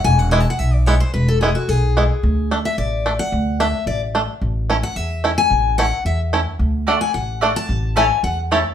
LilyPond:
<<
  \new Staff \with { instrumentName = "Steel-string acoustic guitar" } { \time 4/4 \key d \lydian \tempo 4 = 220 gis''8 fis''8 \tuplet 3/2 { gis''8 a''8 fis''8 } e''8 d''8 cis''8 c''8 | b'8 a'8 gis'8 fis'8 gis'2~ | gis'4 r8 e''8 d''4. fis''8~ | fis''4 e''4 d''8 r4. |
r4. fis''8 e''4. gis''8~ | gis''4 fis''4 e''8 r4. | r4. gis''8 fis''4. a''8~ | a''4 gis''4 fis''8 r4. | }
  \new Staff \with { instrumentName = "Mandolin" } { \time 4/4 \key d \lydian r1 | r1 | r1 | r1 |
r1 | r1 | r4 <a fis' d'' fis''>8 r4. <a fis' d'' fis''>8 r8 | r4 <a e' cis'' a''>8 r4. <a e' cis'' a''>8 r8 | }
  \new Staff \with { instrumentName = "Five-string banjo" } { \time 4/4 \key d \lydian r4 <gis b e'>8 r4. <gis b e'>8 r8 | r4 <gis b e'>8 r4. <gis b e'>8 r8 | r4 <a d'>8 r4. <a d'>8 r8 | r4 <a d'>8 r4. <a d'>8 r8 |
r4 <a cis' e'>8 r4. <a cis' e'>8 r8 | r4 <a cis' e'>8 r4. <a cis' e'>8 r8 | r4 <a d'>8 r4. <a d'>8 r8 | r4 <a cis' e'>8 r4. <a cis' e'>8 r8 | }
  \new Staff \with { instrumentName = "Upright bass" } { \clef bass \time 4/4 \key d \lydian e,,2 b,,2 | e,,2 b,,2 | d,2 a,,2 | d,2 a,,2 |
a,,2 e,2 | a,,2 e,2 | d,2 a,,2 | a,,2 e,2 | }
>>